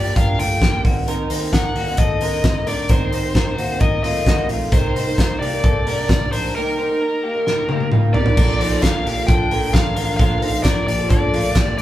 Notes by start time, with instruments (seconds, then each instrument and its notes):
Already playing: picked electric bass G1, clean electric guitar A#3 G4, lead electric guitar D5
0.03 twelve-string acoustic guitar F3 A#3 D4 G4
0.16 picked electric bass G1, clean electric guitar D4 A#4, lead electric guitar F5, kick, closed hi-hat
0.38 picked electric bass G1, twelve-string acoustic guitar F3 A#3 D4 G4, clean electric guitar A3 F4, lead electric guitar G5, open hi-hat
0.60 picked electric bass G1, twelve-string acoustic guitar F3 A#3 D4 G4, clean electric guitar A#3 G4, kick, snare, closed hi-hat
0.84 picked electric bass D#2, twelve-string acoustic guitar F#3 C4 D#4 A#4, clean electric guitar A#3 F#4, kick, open hi-hat
1.06 twelve-string acoustic guitar D#3 F#3 C4 D#4 A#4, clean electric guitar D#4 A#4, closed hi-hat
1.30 picked electric bass D#2, clean electric guitar D#4 C5, open hi-hat
1.40 twelve-string acoustic guitar C4 D#4 A#4
1.53 clean electric guitar D#4 A#4, lead electric guitar F#5, kick, snare, closed hi-hat
1.76 picked electric bass D#2, clean electric guitar A#3 F#4, open hi-hat
1.86 twelve-string acoustic guitar C4 D#4 A#4
1.97 picked electric bass D#2, clean electric guitar C4 A4, lead electric guitar D#5, kick, closed hi-hat
2.20 picked electric bass D#2, clean electric guitar D3 A#4, twelve-string acoustic guitar F#3 C4 D#4 A#4, open hi-hat
2.44 picked electric bass D#2, twelve-string acoustic guitar F#3 C4 D#4 A#4, kick, snare, closed hi-hat
2.66 picked electric bass D2, twelve-string acoustic guitar F#3 C4 D#4 A#4, clean electric guitar D4 A#4, lead electric guitar D5, open hi-hat
2.89 picked electric bass D#2, twelve-string acoustic guitar D#3 F#3 C4 D#4 A#4, clean electric guitar D#4 A#4, lead electric guitar C5, kick, closed hi-hat
3.12 picked electric bass D#2, clean electric guitar D#4 C5, open hi-hat
3.23 twelve-string acoustic guitar C4 D#4 A#4
3.35 clean electric guitar D#4 A#4, kick, snare, closed hi-hat
3.58 picked electric bass D#2, clean electric guitar A#3 F#4, open hi-hat
3.69 twelve-string acoustic guitar C4 D#4 A#4
3.81 picked electric bass D#2, clean electric guitar D#4 A#4, lead electric guitar D#5, kick, closed hi-hat
4.03 picked electric bass D#2, twelve-string acoustic guitar F#3 C4 D#4 A#4, clean electric guitar A3 F4, lead electric guitar D#5, open hi-hat
4.25 picked electric bass D#2, twelve-string acoustic guitar F#3 C4 D#4 A#4, clean electric guitar A#3 F#4, kick, snare, closed hi-hat
4.49 picked electric bass A#1, twelve-string acoustic guitar F#3 C4 D#4 A#4, clean electric guitar A3 F4, open hi-hat
4.72 picked electric bass C2, twelve-string acoustic guitar C3 G3 A#3 D#4 A#4, clean electric guitar D#4 A#4, lead electric guitar C5, kick, closed hi-hat
4.95 picked electric bass C2, clean electric guitar D#4 C5, open hi-hat
5.05 twelve-string acoustic guitar A#3 D#4 A#4
5.18 clean electric guitar D#4 A#4, kick, snare, closed hi-hat
5.39 picked electric bass C2, clean electric guitar A#3 G4, lead electric guitar D5, open hi-hat
5.52 twelve-string acoustic guitar A#3 D#4 A#4
5.63 picked electric bass C2, clean electric guitar C4 A4, kick, closed hi-hat
5.85 picked electric bass C2, twelve-string acoustic guitar G3 A#3 D#4 A#4, clean electric guitar D4 A#4, open hi-hat
6.08 picked electric bass C2, twelve-string acoustic guitar G3 A#3 D#4 A#4, kick, snare, closed hi-hat
6.32 picked electric bass A#1, twelve-string acoustic guitar G3 A#3 D#4 A#4, clean electric guitar D4 A#4, lead electric guitar C5, open hi-hat
6.55 twelve-string acoustic guitar C3 G3 A#3 D#4 A#4, clean electric guitar D#4 A#4, lead electric guitar A#4
6.78 clean electric guitar D#4 C5
6.89 twelve-string acoustic guitar A#3 D#4 A#4
7.01 clean electric guitar D#4 A#4
7.23 clean electric guitar A#3 G4
7.34 twelve-string acoustic guitar A#3 D#4 A#4
7.46 clean electric guitar D#4 A#4, snare
7.68 twelve-string acoustic guitar G3 A#3 D#4 A#4, clean electric guitar A#3 G4, high tom
7.80 high tom
7.91 twelve-string acoustic guitar G3 A#3 D#4 A#4, clean electric guitar A#3 F4, mid tom
8.13 twelve-string acoustic guitar G3 A#3 D#4 A#4, clean electric guitar G3 D#4, lead electric guitar D5, floor tom
8.26 floor tom
8.36 picked electric bass A#1, twelve-string acoustic guitar A#2 D3 F3 A#3 D4 A4, string machine D3 F3 A#3 F4, clean electric guitar D4 A#4, kick, crash
8.60 picked electric bass A#1, clean electric guitar D#4 C5, open hi-hat
8.70 twelve-string acoustic guitar F3 A#3 D4 A4
8.83 clean electric guitar D4 A#4, lead electric guitar F5, kick, snare, clap, closed hi-hat
9.05 picked electric bass A#1, clean electric guitar A#3 G4, open hi-hat
9.16 twelve-string acoustic guitar F3 A#3 D4 A4
9.27 picked electric bass A#1, clean electric guitar D4 A4, lead electric guitar G5, kick, clap, closed hi-hat
9.50 picked electric bass A#1, twelve-string acoustic guitar F3 A#3 D4 A4, clean electric guitar D4 A#4, open hi-hat
9.73 picked electric bass A#1, twelve-string acoustic guitar F3 A#3 D4 A4, lead electric guitar F5, kick, snare, clap, closed hi-hat
9.96 picked electric bass A1, twelve-string acoustic guitar F3 A#3 D4 A4, clean electric guitar D4 A#4, open hi-hat
10.17 picked electric bass A#1, twelve-string acoustic guitar A#2 D3 F3 A#3 D4 A4, clean electric guitar D4 A#4, lead electric guitar F5, kick, closed hi-hat
10.42 picked electric bass A#1, clean electric guitar D#4 C5, open hi-hat
10.52 twelve-string acoustic guitar F3 A#3 D4 A4
10.63 clean electric guitar D4 A#4, lead electric guitar D5, kick, snare, clap, closed hi-hat
10.87 picked electric bass A#1, clean electric guitar A#3 G4, lead electric guitar D5, open hi-hat
10.98 twelve-string acoustic guitar F3 A#3 D4 A4
11.10 picked electric bass A#1, clean electric guitar D4 A4, lead electric guitar D5, kick, clap, closed hi-hat
11.32 picked electric bass A#1, twelve-string acoustic guitar F3 A#3 D4 A4, clean electric guitar A3 F4, open hi-hat
11.55 picked electric bass A#1, twelve-string acoustic guitar F3 A#3 D4 A4, clean electric guitar A#3 G4, kick, snare, clap, closed hi-hat
11.77 picked electric bass F1, twelve-string acoustic guitar F3 A#3, lead electric guitar D5, open hi-hat